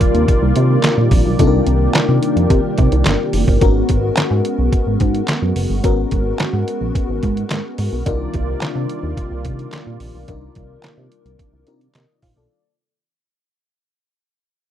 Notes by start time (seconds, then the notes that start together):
Already playing: C3 D#3 G3 A#3 D4 D#4 F4 A#4 D5
0.01 kick, closed hi-hat
0.14 D#2, closed hi-hat
0.28 kick, closed hi-hat
0.42 C2
0.56 C3, closed hi-hat
0.83 snare, clap, closed hi-hat
0.98 A#2
1.11 A#1, kick, open hi-hat
1.26 B1
1.39 C2 D4 D#4 F4 G4 A4, kick, closed hi-hat
1.47 A#4
1.67 C2, closed hi-hat
1.95 C3, snare, clap, closed hi-hat
2.09 C3
2.23 closed hi-hat
2.36 F2, closed hi-hat
2.50 C3, kick, closed hi-hat
2.78 C3, kick, closed hi-hat
2.92 C2, closed hi-hat
3.05 G1, snare, clap, closed hi-hat
3.33 F#1, open hi-hat
3.48 G1, kick
3.61 G#1 G#3 B3 C#4 F#4 A#4, kick, closed hi-hat
3.89 G#1, kick, closed hi-hat
4.17 G#2, snare, clap, closed hi-hat
4.31 G#2
4.45 closed hi-hat
4.58 B1
4.72 kick, closed hi-hat
4.86 G#1
5.00 G#2, kick, closed hi-hat
5.15 closed hi-hat
5.28 snare, clap, closed hi-hat
5.42 F#2
5.56 F#1, open hi-hat
5.70 G1
5.83 G#1 B3 C#4 F#4 A#4, kick, closed hi-hat
6.11 G#1, kick, closed hi-hat
6.39 G#2, snare, clap, closed hi-hat
6.53 G#2
6.68 closed hi-hat
6.81 A#1
6.95 kick, closed hi-hat
7.09 G#1
7.23 G#2, kick, closed hi-hat
7.37 closed hi-hat
7.50 G#2, snare, clap, closed hi-hat
7.78 G#2, open hi-hat
7.92 B1
8.06 C2 C3 D#3 G3 A#3 D4 D#4 F4 A#4 D5, kick, closed hi-hat
8.34 C2, kick, closed hi-hat
8.61 C3, snare, clap, closed hi-hat
8.75 C3
8.89 closed hi-hat
9.03 D#2
9.17 kick, closed hi-hat
9.31 C2
9.45 C3, kick, closed hi-hat
9.59 closed hi-hat
9.72 snare, clap, closed hi-hat
9.87 A#2
10.00 A#1, open hi-hat
10.14 B1
10.28 C2 D4 D#4 F4 A#4, kick, closed hi-hat
10.55 C2, kick, closed hi-hat
10.83 C3, snare, clap, closed hi-hat
10.98 C3
11.12 closed hi-hat
11.26 C2, closed hi-hat
11.39 kick, closed hi-hat
11.53 C2
11.67 C3 D4 D#4 F4 A#4, closed hi-hat
11.81 closed hi-hat
11.95 C3 A#4 D#5, snare, clap, closed hi-hat
12.22 A#2 C5 F5, kick, open hi-hat
12.36 B1 A4 D5